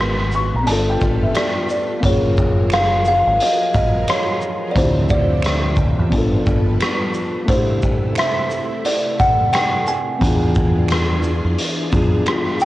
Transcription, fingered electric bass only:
0, 0, Header, 1, 2, 480
1, 0, Start_track
1, 0, Tempo, 681818
1, 1430, Time_signature, 4, 2, 24, 8
1, 8906, End_track
2, 0, Start_track
2, 0, Title_t, "Fingered electric bass"
2, 0, Program_c, 0, 33
2, 0, Note_on_c, 0, 32, 104
2, 352, Note_off_c, 0, 32, 0
2, 382, Note_on_c, 0, 34, 83
2, 458, Note_off_c, 0, 34, 0
2, 471, Note_on_c, 0, 31, 97
2, 676, Note_off_c, 0, 31, 0
2, 717, Note_on_c, 0, 31, 89
2, 919, Note_off_c, 0, 31, 0
2, 1432, Note_on_c, 0, 30, 113
2, 2273, Note_off_c, 0, 30, 0
2, 2301, Note_on_c, 0, 32, 92
2, 2377, Note_off_c, 0, 32, 0
2, 2635, Note_on_c, 0, 32, 84
2, 2838, Note_off_c, 0, 32, 0
2, 3350, Note_on_c, 0, 38, 104
2, 4192, Note_off_c, 0, 38, 0
2, 4218, Note_on_c, 0, 40, 91
2, 4296, Note_off_c, 0, 40, 0
2, 4310, Note_on_c, 0, 31, 97
2, 4516, Note_off_c, 0, 31, 0
2, 4553, Note_on_c, 0, 31, 91
2, 4757, Note_off_c, 0, 31, 0
2, 7192, Note_on_c, 0, 40, 100
2, 8033, Note_off_c, 0, 40, 0
2, 8058, Note_on_c, 0, 41, 77
2, 8136, Note_off_c, 0, 41, 0
2, 8397, Note_on_c, 0, 41, 90
2, 8600, Note_off_c, 0, 41, 0
2, 8906, End_track
0, 0, End_of_file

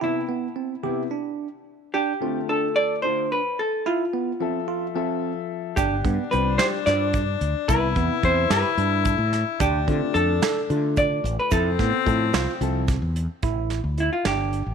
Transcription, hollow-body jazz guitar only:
0, 0, Header, 1, 2, 480
1, 0, Start_track
1, 0, Tempo, 547445
1, 19, Time_signature, 7, 3, 24, 8
1, 12928, End_track
2, 0, Start_track
2, 0, Title_t, "Hollow-body jazz guitar"
2, 0, Program_c, 0, 26
2, 32, Note_on_c, 0, 64, 69
2, 1433, Note_off_c, 0, 64, 0
2, 1699, Note_on_c, 0, 67, 82
2, 2182, Note_off_c, 0, 67, 0
2, 2186, Note_on_c, 0, 69, 76
2, 2418, Note_on_c, 0, 74, 106
2, 2432, Note_off_c, 0, 69, 0
2, 2647, Note_off_c, 0, 74, 0
2, 2651, Note_on_c, 0, 72, 92
2, 2904, Note_off_c, 0, 72, 0
2, 2911, Note_on_c, 0, 71, 86
2, 3150, Note_on_c, 0, 69, 80
2, 3154, Note_off_c, 0, 71, 0
2, 3370, Note_off_c, 0, 69, 0
2, 3388, Note_on_c, 0, 65, 67
2, 4791, Note_off_c, 0, 65, 0
2, 5053, Note_on_c, 0, 67, 78
2, 5534, Note_on_c, 0, 71, 80
2, 5553, Note_off_c, 0, 67, 0
2, 5767, Note_off_c, 0, 71, 0
2, 5771, Note_on_c, 0, 72, 91
2, 5838, Note_off_c, 0, 72, 0
2, 6015, Note_on_c, 0, 74, 96
2, 6732, Note_off_c, 0, 74, 0
2, 6736, Note_on_c, 0, 71, 87
2, 7227, Note_off_c, 0, 71, 0
2, 7231, Note_on_c, 0, 72, 89
2, 7460, Note_off_c, 0, 72, 0
2, 7463, Note_on_c, 0, 71, 76
2, 7963, Note_off_c, 0, 71, 0
2, 7963, Note_on_c, 0, 69, 76
2, 8148, Note_off_c, 0, 69, 0
2, 8425, Note_on_c, 0, 67, 82
2, 8888, Note_off_c, 0, 67, 0
2, 8892, Note_on_c, 0, 69, 92
2, 9626, Note_on_c, 0, 74, 94
2, 9638, Note_off_c, 0, 69, 0
2, 9959, Note_off_c, 0, 74, 0
2, 9991, Note_on_c, 0, 71, 86
2, 10102, Note_on_c, 0, 69, 78
2, 10110, Note_off_c, 0, 71, 0
2, 11266, Note_off_c, 0, 69, 0
2, 12278, Note_on_c, 0, 64, 66
2, 12383, Note_off_c, 0, 64, 0
2, 12386, Note_on_c, 0, 65, 61
2, 12506, Note_off_c, 0, 65, 0
2, 12510, Note_on_c, 0, 67, 76
2, 12928, Note_off_c, 0, 67, 0
2, 12928, End_track
0, 0, End_of_file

